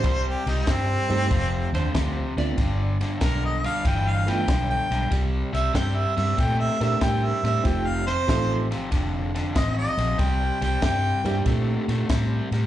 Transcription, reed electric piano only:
X:1
M:4/4
L:1/8
Q:"Swing" 1/4=95
K:Cmix
V:1 name="Reed electric piano"
z3 [A,C_EG] z3 [A,=B,DF] | z4 z [A,=B,DF] z2 | z4 z [CDEGB]3 | [A,C_EFG] z [A,CEFA] z4 z |
z3 [B,CDEG]3 z2 |]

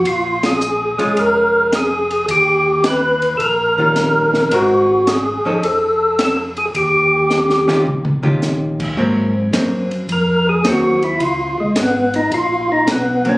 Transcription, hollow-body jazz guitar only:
X:1
M:4/4
L:1/8
Q:"Swing" 1/4=108
K:Ebdor
V:1 name="Hollow-body jazz guitar"
z3 [A,DF]3 z2 | z4 z [E,=G,DF]3 | [A,CGB] z2 [F,DE=A] z4 | z3 [E,DF=G] z [E,DFG]3 |
[G,B,C] z [G,B,C] z3 [G,B,C] z | z6 z [G,B,C] |]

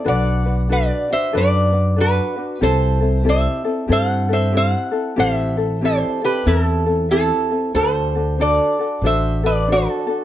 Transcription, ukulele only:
X:1
M:4/4
L:1/8
Q:"Swing" 1/4=94
K:Bphr
V:1 name="Ukulele"
[DFAB] [DFB] [DFAB] [DF] [DFAB] [DFB] [DFAB] [DFB] | [CEGA] [CEA] [CEGA] [CEA] [CEGA] [CEA] [CEGA] [CEA] | [CEGA] [CEA] [CEGA] [CEA] [CEGA] [CEA] [CEGA] [CEA] | [DFAc] [DFA] [DFAc] [DFA] [DFAc] [DFA] [DFAc] [DFA] |]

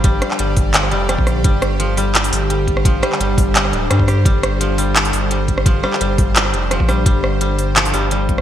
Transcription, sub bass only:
X:1
M:4/4
L:1/16
Q:1/4=171
K:Cdor
V:1 name="Sub bass" clef=bass
G,,,2 z2 G,,,6 F,,,3 B,,,3 | G,,,8- G,,,2 G,,,6- | G,,,2 z2 G,,,6 D,,,2 G,,4 | G,,,8- G,,,2 G,,,6- |
G,,,2 z2 G,,,6 F,,,3 B,,,3 | G,,,8- G,,,2 G,,,6 |]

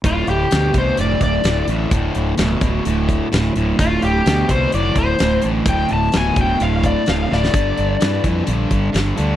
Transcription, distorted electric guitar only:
X:1
M:4/4
L:1/8
Q:1/4=128
K:Dm
V:1 name="Distorted electric guitar" clef=bass
[D,,A,,]2 [D,,=B,,] [D,,B,,] [D,,A,,]2 [D,,A,,] [D,,A,,] | [D,,A,,]2 [D,,=B,,] [D,,B,,] [D,,A,,]2 [D,,A,,] [D,,A,,] | [D,,A,,]2 [D,,=B,,] [D,,B,,] [D,,A,,]2 [D,,A,,] [D,,A,,] | [D,,A,,]2 [D,,=B,,] [D,,B,,] [D,,A,,]2 [D,,A,,] [D,,A,,] |
[G,,D,]2 [G,,E,] [G,,E,] [G,,D,]2 [G,,D,] [G,,D,] |]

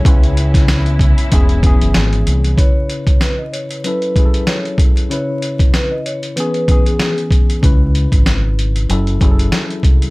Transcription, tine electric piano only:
X:1
M:4/4
L:1/8
Q:"Swing 16ths" 1/4=95
K:C#m
V:1 name="Tine electric piano"
[C,CEB]3 z [E,B,CG] [E,B,CG]2 z | [C,CEB]3 z [F,CEA] [F,CEGA]2 z | [C,CEB]3 z [E,B,CG] [E,B,CG]2 z | [C,CEB]3 z [F,CEA] [F,CEGA]2 z |]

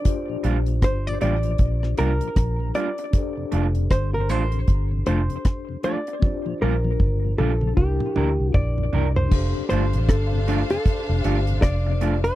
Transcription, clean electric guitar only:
X:1
M:4/4
L:1/8
Q:"Swing 16ths" 1/4=78
K:F
V:1 name="Clean electric guitar"
z [G,DF] z [G,DF] z [G,DF] z [G,DF] | z [A,DF] z [A,DF] z [A,DF] z [A,DF] | z [G,DF] z [G,DF] z [DEB] z [DEB] | z [A,DF] z [A,DF] z [A,DF] z [A,DF] |]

